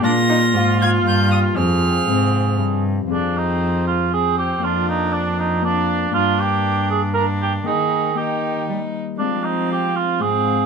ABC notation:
X:1
M:3/4
L:1/8
Q:1/4=118
K:Fdor
V:1 name="Violin"
b'3 a' g' e' | f'4 z2 | c4 c2 | B4 B2 |
B4 B2 | B2 B3 z | f4 f2 |]
V:2 name="Cor anglais"
F6 | A4- A z | D E2 F A G | F E D E D2 |
F G2 A B G | A2 G2 z2 | D E G F A2 |]
V:3 name="Viola"
D E F F3 | C4- C z | C4 C2 | D4 D2 |
D4 D2 | E2 E3 z | C4 C2 |]
V:4 name="Harp"
[B,Fd]6 | [F,Fc]6 | [CFA]6 | [B,DF]4 [B,DF]2 |
[B,D]6 | [B,Eg]2 [B,EG]4 | [A,CF]4 [A,CF]2 |]
V:5 name="Harp" clef=bass
B,,4 G,,2 | F,,2 C,2 G,,2 | F,,6 | F,,6 |
G,,6 | E,4 G,2 | F,4 A,,2 |]
V:6 name="Cello" clef=bass
B,,2 A,,2 G,,2 | F,,2 A,,2 G,,2 | F,,6 | F,,6 |
G,,6 | E,4 G, z | F,4 A,,2 |]